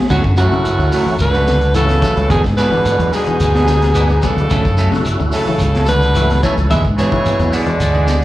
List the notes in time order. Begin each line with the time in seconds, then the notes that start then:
0.10 D2 F#2 A2 D3 F#3 A3 C#4 F#4, kick, crash, shekere
0.24 F#2, muted clean electric guitar stroke, kick, shekere
0.37 F#2 A2 F#3 A3 C#4 F#4, closed hi-hat, shekere
0.51 C#3 A3 C#4 E4 F#4, muted clean electric guitar stroke, shekere
0.65 muted fingered electric bass stroke, muted clean electric guitar stroke, closed hi-hat, shekere
0.79 D2 D3, muted clean electric guitar stroke, shekere
0.92 F#3 A3 C#4 F#4, open hi-hat, shekere
1.06 E3, muted fingered electric bass stroke, muted clean electric guitar stroke, shekere
1.19 C#2 B2 D3 B4, muted clean electric guitar stroke, closed hi-hat, shekere
1.34 F#3 A3 C#4 F#4, closed hi-hat, shekere
1.47 D3, snare, closed hi-hat, shekere
1.61 closed hi-hat, shekere
1.74 A2 C#3 E3 F#3 A3 C#4 E4 F#4 A4, muted clean electric guitar stroke, closed hi-hat, shekere
1.89 muted clean electric guitar stroke, snare, closed hi-hat, shekere
2.02 E3 F#3 A3 C#4 E4 F#4, kick, closed hi-hat, shekere
2.17 C#2, muted clean electric guitar stroke, closed hi-hat, shekere
2.30 E2 G#2 B2 D3 B3 D4 G#4, kick, closed hi-hat, shekere
2.44 G#2, muted clean electric guitar stroke, kick, snare, shekere
2.57 B2 D3 B3 D4 G#4 B4, snare, closed hi-hat, shekere
2.71 E3 G#3 B3 D4 F#4, muted clean electric guitar stroke, shekere
2.85 muted clean electric guitar stroke, muted fingered electric bass stroke, closed hi-hat, shekere
2.99 E2 F#3, muted clean electric guitar stroke, closed hi-hat, shekere
3.13 G#2 B2 B3 D4 G#4, open hi-hat, shekere
3.26 E3, muted clean electric guitar stroke, muted fingered electric bass stroke, closed hi-hat, shekere
3.40 D2, muted clean electric guitar stroke, closed hi-hat, shekere
3.54 B3 D4 G#4, snare, shekere
3.67 D3, snare, closed hi-hat, shekere
3.81 snare, closed hi-hat, shekere
3.95 G#3 B3 D4 F#4 G#4, closed hi-hat, shekere
4.08 muted clean electric guitar stroke, shekere
4.22 A2 C#3 F#3 G#3 B3 D4 F#4 G#4, kick, closed hi-hat, shekere
4.26 A4
4.36 D2, muted clean electric guitar stroke, closed hi-hat, shekere
4.50 D2 D3 F#3 A3 C#4 A4, kick, closed hi-hat, shekere
4.64 F#2, kick, shekere
4.78 F#3 A3 C#4 A4, closed hi-hat, shekere
4.91 C#3 A3 C#4 E4 F#4, muted clean electric guitar stroke, snare, shekere
5.05 muted clean electric guitar stroke, muted fingered electric bass stroke, closed hi-hat, shekere
5.20 D2 D3, muted clean electric guitar stroke, shekere
5.32 A2 C#3 F#3 A3 C#4 A4, open hi-hat, shekere
5.47 E3, muted clean electric guitar stroke, muted fingered electric bass stroke, shekere
5.58 C#2, muted clean electric guitar stroke, closed hi-hat, shekere
5.74 F#3 A3 A4, muted clean electric guitar stroke, snare, closed hi-hat, shekere
5.86 B2 D3 B4, closed hi-hat, shekere
6.01 closed hi-hat, shekere
6.15 E3 F#3 A3 C#4 E4 F#4 A4, closed hi-hat, shekere
6.30 muted clean electric guitar stroke, snare, closed hi-hat, shekere
6.43 C#3 E3 F#3 A3 C#4 E4 A4 C#5, kick, closed hi-hat, shekere
6.57 C#2, muted clean electric guitar stroke, closed hi-hat, shekere
6.70 E2 D3 E3 G#3 B3 D4 G#4 E5, kick, closed hi-hat, shekere
6.85 G#2, muted clean electric guitar stroke, kick, shekere
6.97 C#3 E3 B3 D4 G#4 C#5, snare, closed hi-hat, shekere
7.12 E3 G#3 B3 E4 F#4, muted clean electric guitar stroke, kick, shekere
7.26 muted clean electric guitar stroke, muted fingered electric bass stroke, closed hi-hat, shekere
7.39 E2 F#3, muted clean electric guitar stroke, closed hi-hat, shekere
7.53 D3 E3 G#3 B3 D4 G#4 D5, open hi-hat, shekere
7.67 E3, muted clean electric guitar stroke, muted fingered electric bass stroke, closed hi-hat, shekere
7.80 D2, muted clean electric guitar stroke, closed hi-hat, shekere
7.94 E3 D4 G#4, shekere
8.07 D3, snare, closed hi-hat, shekere